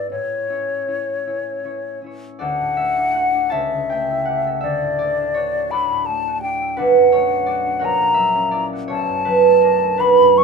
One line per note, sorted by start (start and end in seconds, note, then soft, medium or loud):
0.00 0.14 G#2 soft
0.00 0.14 B3 soft
0.00 0.49 E4 soft
0.00 0.11 D5 medium
0.00 0.15 D5 soft
0.00 2.44 E5 soft
0.11 2.45 A2 soft
0.11 2.00 C#5 medium
0.50 0.87 C#4 soft
0.50 0.87 E4 soft
0.50 0.87 C#5 soft
0.88 1.25 C#4 soft
0.88 1.26 E4 soft
0.88 1.26 C#5 soft
1.26 1.63 C#4 soft
1.26 1.63 E4 soft
1.26 1.64 C#5 soft
1.64 2.01 C#4 soft
1.64 2.03 E4 soft
1.64 2.03 C#5 soft
2.02 2.45 C#4 soft
2.02 2.45 E4 soft
2.06 2.45 C#5 soft
2.39 3.55 D2 medium
2.39 3.15 F#4 medium
2.39 4.45 A4 medium
2.39 3.54 D5 medium
2.39 3.54 F#5 medium
2.61 3.56 A2 soft
2.77 3.91 A3 soft
2.77 3.41 E5 medium
2.97 3.33 D4 soft
3.14 3.56 F#4 soft
3.14 3.55 F#5 medium
3.35 3.56 D4 soft
3.50 4.66 C#2 medium
3.50 4.65 C#5 medium
3.50 4.59 E5 medium
3.50 4.62 E5 medium
3.50 7.40 A5 medium
3.73 4.67 C#3 soft
3.90 5.01 A3 soft
3.90 4.66 G5 medium
4.10 4.68 E4 soft
4.25 4.67 G4 soft
4.25 4.89 F#5 medium
4.47 5.71 A4 soft
4.61 6.83 D2 medium
4.61 5.72 D5 medium
4.61 5.25 E5 medium
4.82 5.90 A2 soft
4.99 5.74 A3 soft
4.99 5.70 D5 medium
5.19 5.56 D4 soft
5.34 5.72 F#4 soft
5.34 5.97 C#5 medium
5.57 6.43 D4 soft
5.71 6.07 A3 soft
5.71 6.27 F#4 medium
5.71 7.89 A4 medium
5.71 7.45 D5 medium
5.71 6.07 B5 medium
5.91 6.83 A2 soft
6.06 6.61 A3 soft
6.06 6.42 A5 medium
6.28 6.77 F#4 soft
6.42 6.77 D4 soft
6.42 6.80 G5 medium
6.62 7.13 A3 soft
6.77 7.89 B1 medium
6.77 7.30 D4 medium
6.77 7.47 F#4 medium
6.77 7.87 B4 medium
6.77 7.86 F#5 medium
6.97 7.89 F#2 soft
7.12 7.89 A3 soft
7.12 7.74 C#5 medium
7.31 7.64 D4 soft
7.46 8.72 F#4 soft
7.46 7.87 D5 medium
7.66 7.88 D4 soft
7.79 8.95 A#1 medium
7.79 8.94 A#4 medium
7.79 8.87 C#5 medium
7.79 10.44 F#5 medium
7.85 8.66 A#5 medium
7.99 8.95 A#2 soft
8.14 9.27 F#3 soft
8.14 8.93 E5 medium
8.35 8.95 C#4 soft
8.51 8.95 E4 medium
8.51 9.16 D5 medium
8.73 9.98 F#4 medium
8.88 10.44 B1 medium
8.88 9.52 C#5 medium
8.88 10.02 A5 medium
9.08 10.19 F#2 soft
9.25 9.99 F#3 soft
9.25 9.96 B4 medium
9.46 9.82 A3 soft
9.61 9.98 D4 medium
9.61 10.25 A#4 medium
9.83 10.44 A3 soft
9.98 10.36 F#3 medium
9.98 10.44 D4 medium
9.98 10.44 F#4 medium
9.98 10.44 B4 medium
9.98 10.39 B5 medium
10.20 10.44 F#2 soft
10.38 10.44 F#3 soft
10.38 10.44 C#6 medium